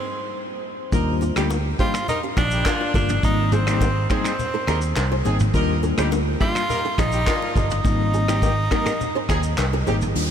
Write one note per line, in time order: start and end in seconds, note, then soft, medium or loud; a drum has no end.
0.00 0.60 C4 medium
0.92 1.30 D#2 loud
0.92 1.33 G3 loud
0.92 1.33 A#3 medium
0.92 1.33 D4 medium
0.92 1.16 D#4 loud
0.92 1.33 F4 loud
0.92 1.16 G4 loud
0.92 1.16 A#4 loud
0.92 kick loud
0.92 low conga medium
0.92 shaker medium
1.21 1.33 D#4 medium
1.21 1.32 G4 medium
1.21 low bongo medium
1.21 shaker medium
1.36 1.73 D2 medium
1.36 1.55 G3 medium
1.36 1.47 G3 medium
1.36 1.56 A#3 medium
1.36 1.56 D4 medium
1.36 1.47 D#4 medium
1.36 1.56 F4 medium
1.36 1.48 G4 loud
1.36 1.47 G4 medium
1.36 1.46 A#4 medium
1.36 finger snap loud
1.36 cross-stick loud
1.36 shaker medium
1.50 high bongo medium
1.50 shaker medium
1.79 1.99 G3 medium
1.79 1.91 G3 medium
1.79 1.99 A#3 medium
1.79 1.99 D4 medium
1.79 1.91 D#4 medium
1.79 1.99 F4 medium
1.79 2.06 F4 loud
1.79 1.91 G4 medium
1.79 1.90 G#4 medium
1.79 1.90 C5 medium
1.79 kick loud
1.79 shaker soft
1.94 finger snap medium
1.94 cross-stick loud
1.94 shaker medium
2.08 2.20 D#4 medium
2.08 2.22 D#4 loud
2.08 2.20 G4 medium
2.08 2.20 A#4 loud
2.08 low conga medium
2.08 shaker medium
2.23 2.33 G4 medium
2.23 2.33 A#4 medium
2.37 2.61 A#1 medium
2.37 2.91 D4 loud
2.37 2.48 D#4 medium
2.37 2.47 G4 medium
2.37 finger snap medium
2.37 kick loud
2.37 cross-stick medium
2.37 open hi-hat medium
2.37 low bongo medium
2.37 shaker medium
2.51 2.63 G3 medium
2.51 2.63 D#4 medium
2.51 2.63 G4 medium
2.51 shaker medium
2.66 3.07 A#3 medium
2.66 3.07 D4 medium
2.66 3.07 F4 medium
2.66 finger snap medium
2.66 kick medium
2.66 cross-stick loud
2.66 clap medium
2.66 hi-hat pedal medium
2.66 high bongo medium
2.66 shaker medium
2.81 low bongo medium
2.94 3.19 G1 medium
2.94 3.14 G3 medium
2.94 3.14 A#3 medium
2.94 3.14 D4 medium
2.94 3.22 D4 medium
2.94 3.15 F4 medium
2.94 3.06 G4 medium
2.94 3.05 A#4 medium
2.94 kick loud
2.94 low conga medium
2.94 shaker medium
3.09 mid tom loud
3.09 shaker medium
3.23 4.06 G#1 loud
3.23 3.63 G3 medium
3.23 3.63 A#3 medium
3.23 3.64 C4 medium
3.23 3.64 D#4 loud
3.23 3.55 D#4 loud
3.23 kick loud
3.23 low conga medium
3.23 shaker medium
3.52 4.10 C4 medium
3.52 3.63 F4 medium
3.52 3.63 G#4 medium
3.52 mid tom medium
3.52 low bongo soft
3.52 shaker medium
3.67 3.86 G3 medium
3.67 3.86 A#3 medium
3.67 3.86 C4 medium
3.67 3.90 C4 medium
3.67 3.90 D#4 medium
3.67 3.86 D#4 medium
3.67 3.90 G4 medium
3.67 3.78 G4 medium
3.67 3.77 A#4 medium
3.67 finger snap medium
3.67 cross-stick loud
3.67 shaker medium
3.81 kick medium
3.81 high bongo medium
3.81 shaker medium
4.10 4.30 G3 medium
4.10 4.30 A#3 medium
4.10 4.30 C4 medium
4.10 4.33 C4 medium
4.10 5.22 C4 medium
4.10 4.33 D#4 medium
4.10 4.30 D#4 medium
4.10 4.33 G#4 medium
4.10 4.21 G#4 medium
4.10 4.21 C5 medium
4.10 finger snap medium
4.10 kick loud
4.10 cross-stick loud
4.10 shaker soft
4.25 finger snap medium
4.25 cross-stick loud
4.25 shaker medium
4.39 low conga medium
4.39 shaker medium
4.54 4.64 G4 medium
4.54 4.64 A#4 medium
4.67 4.92 D#2 medium
4.67 4.79 D#4 medium
4.67 4.79 F4 medium
4.67 4.79 G4 medium
4.67 4.78 G#4 medium
4.67 4.79 A#4 loud
4.67 finger snap medium
4.67 cross-stick medium
4.67 low bongo medium
4.67 shaker medium
4.82 shaker medium
4.96 5.21 C2 medium
4.96 finger snap medium
4.96 cross-stick medium
4.96 clap medium
4.96 high bongo medium
4.96 shaker medium
5.12 5.22 G#4 medium
5.12 5.21 C5 medium
5.12 low bongo medium
5.25 5.50 G#1 medium
5.25 5.45 G3 medium
5.25 5.45 A#3 medium
5.25 5.37 C4 medium
5.25 5.45 C4 medium
5.25 5.37 D#4 medium
5.25 5.45 D#4 medium
5.25 5.37 G#4 medium
5.25 5.36 G#4 medium
5.25 5.36 C5 medium
5.25 low conga medium
5.25 shaker medium
5.40 mid tom medium
5.40 shaker medium
5.54 5.91 D#2 loud
5.54 5.94 G3 loud
5.54 5.94 A#3 medium
5.54 5.94 D4 medium
5.54 5.77 D#4 loud
5.54 5.94 F4 loud
5.54 5.77 G4 loud
5.54 5.77 A#4 loud
5.54 kick loud
5.54 low conga medium
5.54 shaker medium
5.83 5.94 G4 medium
5.83 5.94 A#4 medium
5.83 low bongo medium
5.83 shaker medium
5.98 6.34 D2 medium
5.98 6.17 G3 medium
5.98 6.09 G3 medium
5.98 6.17 A#3 medium
5.98 6.17 D4 medium
5.98 6.09 D#4 medium
5.98 6.17 F4 medium
5.98 6.09 G4 loud
5.98 6.08 G#4 medium
5.98 6.08 C5 medium
5.98 finger snap loud
5.98 cross-stick loud
5.98 shaker medium
6.12 high bongo medium
6.12 shaker medium
6.40 6.52 G3 medium
6.40 6.60 G3 medium
6.40 6.61 A#3 medium
6.40 6.61 D4 medium
6.40 6.52 D#4 medium
6.40 6.61 F4 medium
6.40 7.00 F4 loud
6.40 6.52 G4 medium
6.40 6.52 A#4 medium
6.40 6.51 D5 medium
6.40 kick loud
6.40 shaker soft
6.55 finger snap medium
6.55 cross-stick loud
6.55 shaker medium
6.69 6.81 D#4 medium
6.69 6.81 G4 loud
6.69 6.81 A#4 loud
6.69 low conga medium
6.69 shaker medium
6.85 6.95 G4 medium
6.85 6.94 A#4 medium
6.98 7.23 A#1 medium
6.98 7.56 D#4 loud
6.98 7.10 D#4 medium
6.98 7.09 G4 medium
6.98 finger snap medium
6.98 kick loud
6.98 cross-stick medium
6.98 low bongo medium
6.98 shaker medium
7.12 7.24 G3 medium
7.12 7.24 D#4 medium
7.12 7.24 G4 medium
7.12 shaker medium
7.27 7.68 A#3 medium
7.27 7.68 D4 medium
7.27 7.68 F4 medium
7.27 finger snap medium
7.27 kick medium
7.27 cross-stick medium
7.27 clap medium
7.27 high bongo medium
7.27 shaker medium
7.42 low bongo medium
7.56 7.80 G1 medium
7.56 9.83 D#4 loud
7.56 7.67 G4 medium
7.56 7.67 A#4 medium
7.56 kick loud
7.56 low conga medium
7.56 shaker medium
7.70 mid tom medium
7.70 shaker medium
7.84 8.67 G#1 loud
7.84 8.25 G3 medium
7.84 8.25 A#3 medium
7.84 8.25 C4 medium
7.84 8.25 D#4 loud
7.84 kick loud
7.84 low conga medium
7.84 shaker medium
8.14 8.25 F4 medium
8.14 8.24 G#4 medium
8.14 low bongo soft
8.14 shaker medium
8.28 8.48 G3 medium
8.28 8.48 A#3 medium
8.28 8.52 C4 medium
8.28 8.48 C4 medium
8.28 8.52 D#4 medium
8.28 8.48 D#4 medium
8.28 8.39 D#4 medium
8.28 8.52 G4 medium
8.28 8.39 G4 medium
8.28 finger snap medium
8.28 cross-stick loud
8.28 low bongo medium
8.28 shaker medium
8.42 kick medium
8.42 high bongo medium
8.42 shaker medium
8.71 8.91 G3 medium
8.71 8.91 A#3 medium
8.71 8.91 C4 medium
8.71 8.94 D#4 medium
8.71 8.92 D#4 medium
8.71 8.94 G4 medium
8.71 8.82 G4 medium
8.71 8.94 A#4 medium
8.71 8.82 A#4 medium
8.71 finger snap medium
8.71 kick loud
8.71 cross-stick loud
8.71 high bongo medium
8.71 shaker soft
8.86 finger snap medium
8.86 cross-stick loud
8.86 mid tom loud
8.86 high bongo medium
8.86 shaker medium
9.01 low conga medium
9.01 shaker medium
9.15 9.26 G#4 medium
9.15 9.25 C5 medium
9.29 9.54 D#2 medium
9.29 9.41 C4 medium
9.29 9.41 D#4 loud
9.29 9.40 F4 medium
9.29 9.41 G#4 loud
9.29 9.40 G#4 medium
9.29 finger snap medium
9.29 kick loud
9.29 cross-stick medium
9.29 low bongo medium
9.29 shaker medium
9.43 shaker medium
9.58 9.82 C2 medium
9.58 finger snap medium
9.58 cross-stick medium
9.58 clap medium
9.58 high bongo medium
9.58 shaker medium
9.73 9.83 G4 medium
9.73 9.83 A#4 medium
9.73 low bongo medium
9.86 10.11 G#1 medium
9.86 10.07 G3 medium
9.86 10.07 A#3 medium
9.86 9.96 C4 medium
9.86 10.07 C4 medium
9.86 9.96 D#4 medium
9.86 10.07 D#4 medium
9.86 9.96 G4 medium
9.86 9.98 G#4 medium
9.86 9.97 C5 medium
9.86 low conga medium
9.86 shaker medium
10.01 mid tom medium
10.01 shaker medium
10.15 10.31 D#2 medium
10.15 10.31 G3 medium
10.15 10.31 A#3 medium
10.15 10.31 D4 medium
10.15 10.31 F4 medium
10.15 downlifter medium